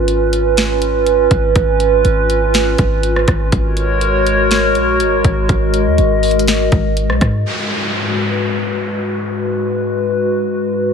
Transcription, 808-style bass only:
0.00 1.27 G#1 loud
1.31 1.55 G#1 loud
1.56 2.03 G#1 loud
2.05 2.76 G#1 loud
2.79 3.26 G#1 loud
3.28 3.52 G#1 loud
3.52 4.77 G#1 loud
4.75 5.01 A#1 loud
5.00 5.23 G#1 loud
5.25 5.48 G#1 loud
5.49 5.88 G#1 loud
5.86 5.98 D#2 loud
5.98 6.69 G#1 loud
6.72 7.11 G#1 loud
7.09 7.21 B1 loud
7.21 7.45 G#2 loud

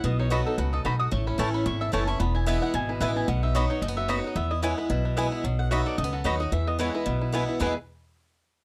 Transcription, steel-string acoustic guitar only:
0.04 0.56 B2 medium
0.30 0.57 F#3 medium
0.30 0.57 B3 medium
0.30 0.57 D#4 medium
0.30 0.57 F#4 medium
0.58 0.84 C#3 medium
0.85 1.11 G#2 medium
1.11 1.63 A2 medium
1.38 1.64 E3 medium
1.38 1.65 A3 medium
1.38 1.65 C#4 medium
1.38 1.65 E4 medium
1.66 2.18 E2 loud
1.92 2.07 E3 medium
1.92 2.07 A3 medium
1.92 2.08 C#4 medium
1.92 2.06 E4 medium
2.07 2.20 C#4 soft
2.07 2.19 E4 medium
2.20 2.72 E2 loud
2.46 2.73 E3 medium
2.46 2.73 G#3 medium
2.46 2.73 B3 loud
2.46 2.74 E4 medium
2.74 3.26 B2 loud
3.00 3.27 E3 medium
3.00 3.27 G#3 loud
3.00 3.27 B3 medium
3.00 3.28 E4 loud
3.28 3.80 B2 medium
3.55 3.81 F#3 loud
3.55 3.81 B3 medium
3.55 3.81 D#4 loud
3.55 3.82 F#4 loud
3.82 4.34 F#2 loud
4.08 4.35 F#3 medium
4.08 4.35 B3 medium
4.08 4.35 D#4 loud
4.08 4.36 F#4 medium
4.36 4.87 E2 medium
4.63 4.89 E3 medium
4.63 4.89 G#3 loud
4.63 4.89 B3 loud
4.63 4.90 E4 loud
4.90 5.42 B2 loud
5.17 5.43 E3 medium
5.17 5.43 G#3 loud
5.17 5.44 B3 loud
5.17 5.44 E4 loud
5.45 5.96 B2 medium
5.71 5.97 F#3 medium
5.71 5.97 B3 medium
5.71 5.98 D#4 medium
5.71 5.98 F#4 medium
5.98 6.50 F#2 medium
6.24 6.39 F#3 medium
6.24 6.40 B3 medium
6.24 6.40 D#4 medium
6.24 6.39 F#4 medium
6.40 6.53 D#4 medium
6.40 6.52 F#4 medium
6.52 7.04 E2 medium
6.79 7.05 E3 medium
6.79 7.05 G#3 medium
6.79 7.05 B3 medium
6.79 7.06 E4 medium
7.06 7.58 B2 medium
7.32 7.59 E3 medium
7.32 7.59 G#3 medium
7.32 7.59 B3 medium
7.32 7.60 E4 medium
7.60 7.72 E2 medium
7.60 7.72 B2 medium
7.60 7.72 E3 medium
7.60 7.73 G#3 loud
7.60 7.73 B3 medium
7.60 7.73 E4 medium

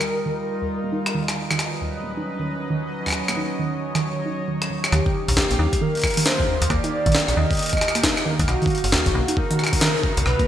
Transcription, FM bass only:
4.92 5.01 D#2 loud
5.28 5.40 A#1 medium
5.51 5.56 A#1 medium
5.59 5.67 D#2 loud
6.62 6.67 D#2 medium
6.70 6.79 D#2 loud
7.06 7.18 A#1 medium
7.28 7.34 A#1 medium
7.37 7.45 D#2 loud
8.39 8.45 D#2 medium
8.48 8.56 B1 loud
8.84 8.95 F#1 medium
9.06 9.11 F#1 medium
9.15 9.23 B1 loud
10.17 10.22 B1 medium
10.26 10.34 B1 loud

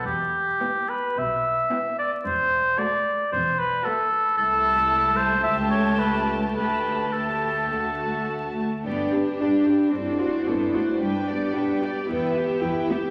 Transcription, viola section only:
0.61 1.03 B3 soft
1.72 2.11 B3 soft
2.79 3.18 A3 soft
3.85 4.24 A3 soft
4.38 5.40 A3 soft
5.44 6.53 A3 medium
6.55 7.11 A3 soft
7.12 7.69 A3 soft
7.71 8.63 A3 soft
8.85 9.11 D4 soft
9.12 9.40 G4 soft
9.40 9.67 D4 soft
9.66 9.94 G4 soft
9.94 10.19 D4 soft
10.21 10.48 F#4 soft
10.47 10.75 D4 soft
10.74 11.02 F#4 soft
11.01 11.27 D4 soft
11.29 11.56 G4 soft
11.55 11.82 D4 soft
11.82 12.09 G4 soft
12.09 12.34 E4 soft
12.35 12.62 G4 soft
12.63 12.89 E4 soft
12.89 13.10 G4 soft

